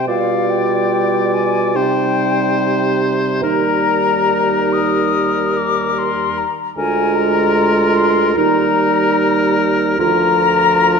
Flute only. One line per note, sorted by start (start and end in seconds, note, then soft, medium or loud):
0.09 0.52 F5 medium
0.50 1.35 G5 medium
1.34 1.77 G#5 medium
1.76 3.01 G5 medium
3.42 4.74 A#5 medium
4.73 5.58 D#6 medium
5.57 6.00 D6 medium
5.98 6.40 C6 medium
6.38 6.76 A#5 medium
6.77 7.17 G#5 medium
7.15 7.98 A#5 medium
7.96 8.35 C6 medium
8.36 9.55 A#5 medium
9.99 11.00 A#5 loud